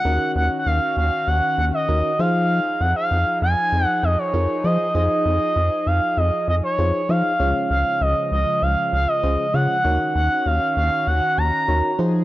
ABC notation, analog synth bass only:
X:1
M:4/4
L:1/16
Q:1/4=98
K:Ebdor
V:1 name="Analog synth bass" clef=bass
E,, z E,, z E,, z E,, z E,, z E,, z E,, z F,2- | F, z F,, z F,, z F,, z F,, z F,, z F,, z F, z | F,, z F,, z F,, z F,, z F,, z F,, z F,, z F, z | D,, z D,, z D,, z D,, z D,, z D,, z D,, z D, z |
E,, z E,, z E,, z E,, z E,, z E,, z E,, z F,2 |]